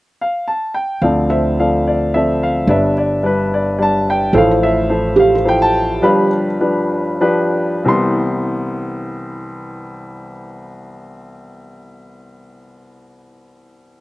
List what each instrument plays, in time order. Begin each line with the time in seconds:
0.21 upright piano F5
0.48 upright piano A5
0.74 upright piano G5
1.02 upright bass D2, upright piano D2 D3 F3 C4 A4 C5 D5 F5
1.30 felt piano C5, upright piano E5
1.59 upright piano F3 C4 A4 D5 F5
1.87 upright piano D5
2.14 upright piano F3 C4 A4 D5 E5
2.43 upright piano F5
2.67 upright bass G1, upright piano G1 G2 G3 D4 B4 D5 E5
2.98 upright piano D5
3.23 upright piano G3 D4 B4 D5
3.54 upright piano D5
3.79 upright piano G3 D4 B4 D5 A5
4.10 upright piano G5
4.33 upright bass A1, upright piano A1 A2 F3 E4 A4 C5, felt piano A4
4.37 upright piano C5 F5
4.51 felt piano C5
4.63 upright piano E5
4.89 upright piano F3 E4 A4 C5
5.16 felt piano G4, upright piano F5
5.35 felt piano C5
5.45 upright piano F3 E4 A4 C5 G5
5.62 upright piano A5
6.02 upright piano G1 G2 F3 D4 G4 B4 F5 B5
6.60 upright piano F3 D4 G4 B4
7.21 upright piano F3 D4 G4 B4
7.83 upright piano C2 E3 C4 G4
7.87 upright piano B3 C6